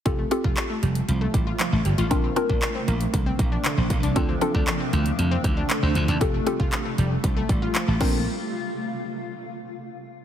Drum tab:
CC |----------------|----------------|----------------|--------------x-|
HH |x-x-x-xxx-x-x-xx|x-x-x-xxx-x-x-xx|x-x-x-xxx-x-x-xx|x-x-x-x-x-x-x---|
CP |----x-------x---|----x-------x---|----x-------x---|----x-------x---|
BD |o--o------o-----|o--o----o-o---o-|o--o------o-----|o--o----o-o---o-|

CC |----------------|
HH |----------------|
CP |----------------|
BD |----------------|